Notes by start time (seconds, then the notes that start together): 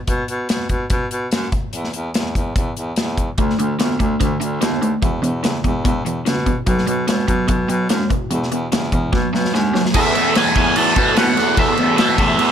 0.07 B2, kick, closed hi-hat
0.28 B2, closed hi-hat
0.49 B2, snare, closed hi-hat
0.69 B2, kick, closed hi-hat
0.90 B2, kick, closed hi-hat
1.11 B2, closed hi-hat
1.31 F#2, snare, closed hi-hat
1.52 kick, closed hi-hat
1.73 E2, closed hi-hat
1.84 snare
1.93 E2, closed hi-hat
2.14 E2, snare, closed hi-hat
2.35 E2, kick, closed hi-hat
2.56 E2, kick, closed hi-hat
2.77 E2, closed hi-hat
2.96 E2, snare, closed hi-hat
3.17 kick, closed hi-hat
3.38 D2 D3 A3, kick, closed hi-hat
3.50 snare
3.59 D2 D3 A3, closed hi-hat
3.79 D2 D3 B3, snare, closed hi-hat
4.00 D2 D3 A3, kick, closed hi-hat
4.20 D2 D3 A3, kick, closed hi-hat
4.40 D2 D3 A3, closed hi-hat
4.61 D#2 D3 B3, snare, closed hi-hat
4.82 D3 A3, closed hi-hat
5.02 E2 B2, kick, closed hi-hat
5.22 E2 B2, closed hi-hat
5.43 E2 C#3, snare, closed hi-hat
5.64 E2 B2, kick, closed hi-hat
5.84 E2 B2, kick, closed hi-hat
6.05 E2 B2, closed hi-hat
6.25 E2 B2 C#3, snare, closed hi-hat
6.46 E2 B2, kick, closed hi-hat
6.66 B2 F#3, kick, closed hi-hat
6.78 snare
6.87 B2 F#3, closed hi-hat
7.08 B2 G#3, snare, closed hi-hat
7.28 B2 F#3, kick, closed hi-hat
7.48 B2 F#3, kick, closed hi-hat
7.69 B2 F#3, closed hi-hat
7.89 F#2 B2 G#3, snare, closed hi-hat
8.10 E2 B2, kick, closed hi-hat
8.31 E2 B2, closed hi-hat
8.43 snare
8.52 E2 B2, closed hi-hat
8.72 E2 C#3, snare, closed hi-hat
8.92 E2 B2, kick, closed hi-hat
9.13 B2 F#3, kick, snare
9.33 B2 F#3, snare
9.45 snare
9.54 D#2 B2 G#3, snare
9.74 B2 F#3, snare
9.86 snare
9.94 E2 B2 E3 A3 B3 A4 E5, kick, crash
10.14 E2 B2 E3 A3 B3 A4, crash
10.35 E2 B2 E3 A3 B3 A4 G#5, snare, crash
10.47 snare
10.55 E2 B2 E3 A3 B3 A4 G#5, kick, crash
10.76 E2 B2 E3 A3 B3 A4 A5, crash
10.96 E2 B2 E3 A3 B3 A4, kick, crash
11.16 E2 B2 E3 A3 B3 A4 F#5, snare, crash
11.37 E2 B2 E3 A3 B3 A4, snare, crash
11.57 E2 B2 E3 A3 B3 A4 E5, kick, crash
11.77 E2 B2 E3 A3 B3 A4, crash
11.97 E2 B2 E3 A3 B3 A4 E5, snare, crash
12.18 E2 B2 E3 A3 B3 A4, kick, crash
12.38 E2 B2 E3 A3 B3 A4, crash